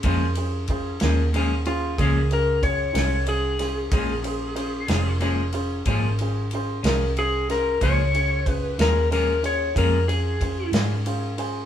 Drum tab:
RD |xxxxxxxxxxxx|xxxxxxxxxxxx|xxxxxxxxxxxx|
SD |---o-----o-o|---o-----o-o|---o-----o--|
BD |o-o---o-o---|o-----o-----|o-o---o-o---|